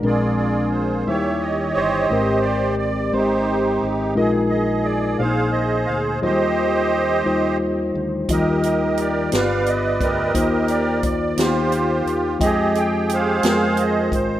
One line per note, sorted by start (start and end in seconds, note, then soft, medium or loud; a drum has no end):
0.00 1.03 A#1 medium
0.00 1.03 A#2 soft
0.00 1.05 G#3 soft
0.00 0.74 G#3 medium
0.00 1.05 A#3 medium
0.00 1.05 C4 medium
0.00 0.75 C4 medium
0.00 1.06 D4 medium
0.04 0.75 D4 medium
0.04 1.04 F4 medium
0.04 1.04 G#4 medium
0.04 0.75 A#4 medium
0.04 0.36 D5 medium
0.37 0.69 D5 medium
0.72 1.07 C5 medium
1.07 1.72 D#2 medium
1.07 2.06 D#3 soft
1.07 2.10 D#3 medium
1.07 1.78 G3 medium
1.07 2.10 G3 medium
1.07 2.10 C#4 medium
1.07 1.78 D#4 soft
1.07 1.79 E4 soft
1.07 1.75 G4 medium
1.07 2.09 G4 medium
1.07 1.14 C5 soft
1.07 2.07 C#5 medium
1.07 1.42 E5 medium
1.15 1.82 C#5 soft
1.41 1.73 D#5 medium
1.74 2.07 G1 medium
1.74 2.75 G4 medium
1.74 2.75 C5 medium
1.74 2.40 D#5 medium
2.10 3.09 G#1 medium
2.10 3.10 G#2 medium
2.10 2.81 G#3 medium
2.10 6.19 G#3 medium
2.10 4.15 A#3 medium
2.10 4.14 C4 soft
2.10 2.82 C4 medium
2.10 4.15 G4 medium
2.10 2.82 G4 soft
2.10 2.82 A#4 medium
2.42 2.77 D5 medium
2.78 3.14 D5 medium
3.13 3.78 G#1 medium
3.13 3.84 G#3 medium
3.13 3.84 C4 soft
3.13 4.14 D#4 soft
3.13 3.85 G4 soft
3.13 4.14 G4 medium
3.13 3.86 C5 medium
3.13 3.85 C5 medium
3.83 4.14 G#1 medium
4.15 5.16 A#1 medium
4.15 5.16 A#2 medium
4.15 4.87 G#3 medium
4.15 6.21 A#3 medium
4.15 4.87 D#4 medium
4.15 9.28 D#4 soft
4.15 5.19 F4 medium
4.15 4.88 F4 medium
4.15 5.17 G#4 medium
4.15 4.88 A#4 medium
4.15 4.32 D#5 medium
4.50 4.86 D#5 medium
4.84 5.20 D5 medium
5.19 5.85 A#1 medium
5.19 6.19 A#2 medium
5.19 5.90 A#3 soft
5.19 8.26 C4 medium
5.19 5.26 D4 soft
5.19 5.91 G#4 soft
5.19 6.20 G#4 medium
5.19 5.91 C5 medium
5.19 6.19 C5 medium
5.19 5.51 F5 medium
5.25 5.93 D#4 soft
5.53 5.89 D#5 medium
5.86 6.20 D2 medium
5.86 6.02 F5 medium
6.22 7.22 D#2 medium
6.22 7.22 D#3 soft
6.22 6.29 F#3 medium
6.22 9.28 G3 medium
6.22 6.94 D#4 medium
6.22 14.40 F4 medium
6.22 6.94 F4 medium
6.22 7.58 G4 medium
6.22 6.94 C5 medium
6.22 7.58 C5 medium
6.22 7.56 D#5 medium
6.29 6.97 G3 medium
7.25 7.91 D#2 medium
7.25 7.96 G3 medium
7.25 7.97 D#4 medium
7.25 7.97 F4 medium
7.25 7.97 C5 medium
7.95 8.27 D2 medium
8.29 9.28 D#2 medium
8.29 9.28 D#3 medium
8.29 8.35 F3 soft
8.29 9.00 D#4 medium
8.29 9.00 F4 medium
8.29 9.30 G4 medium
8.29 9.30 A#4 medium
8.29 9.01 D#5 medium
8.29 8.64 D#5 medium
8.29 kick medium
8.29 closed hi-hat medium
8.35 9.03 G3 medium
8.63 9.00 D#5 medium
8.63 closed hi-hat soft
8.97 9.33 D5 medium
8.97 closed hi-hat soft
9.31 9.97 G1 medium
9.31 10.31 G2 soft
9.31 10.35 G3 medium
9.31 9.38 A#3 soft
9.31 10.34 B3 medium
9.31 10.03 F4 soft
9.31 10.03 G4 soft
9.31 10.04 B4 medium
9.31 10.33 B4 medium
9.31 10.32 D5 medium
9.31 9.69 F5 medium
9.31 snare medium
9.31 closed hi-hat medium
9.38 10.06 B3 soft
9.66 9.99 D#5 medium
9.66 closed hi-hat soft
10.01 10.33 D2 medium
10.01 11.01 G4 medium
10.01 11.01 A#4 medium
10.01 10.67 D#5 medium
10.01 kick medium
10.01 closed hi-hat soft
10.34 11.34 D#2 medium
10.34 11.34 D#3 soft
10.34 11.06 A#3 medium
10.34 12.39 A#3 medium
10.34 11.06 D#4 medium
10.34 14.40 D#4 soft
10.34 11.06 F4 medium
10.34 11.06 C5 medium
10.34 kick medium
10.34 closed hi-hat medium
10.68 11.03 D5 medium
10.68 closed hi-hat soft
11.03 11.39 D5 medium
11.03 kick medium
11.03 closed hi-hat soft
11.37 12.02 D#2 medium
11.37 12.08 A#3 soft
11.37 12.09 D#4 soft
11.37 12.09 F4 soft
11.37 12.09 G4 medium
11.37 snare medium
11.37 closed hi-hat medium
11.41 12.39 F4 medium
11.41 12.39 G4 soft
11.41 12.13 C5 medium
11.72 closed hi-hat soft
12.06 12.38 D#2 medium
12.06 closed hi-hat soft
12.40 13.40 F2 medium
12.40 13.11 G#3 medium
12.40 14.40 G#3 medium
12.40 13.11 F4 medium
12.40 13.41 G4 medium
12.40 13.12 G#4 medium
12.40 13.12 D#5 medium
12.40 12.77 D#5 medium
12.40 13.12 G5 medium
12.40 kick medium
12.40 closed hi-hat medium
12.75 13.12 G5 medium
12.75 closed hi-hat soft
13.09 14.10 C5 medium
13.09 closed hi-hat medium
13.14 14.11 G#4 medium
13.14 13.82 F5 medium
13.43 14.08 F2 medium
13.43 14.15 G#3 medium
13.43 14.15 F4 soft
13.43 14.15 A#4 medium
13.43 14.15 G5 soft
13.43 snare loud
13.43 closed hi-hat medium
13.77 14.15 D#5 medium
13.77 closed hi-hat soft
14.12 14.40 G#1 medium
14.12 14.40 C5 medium
14.12 kick medium
14.12 closed hi-hat soft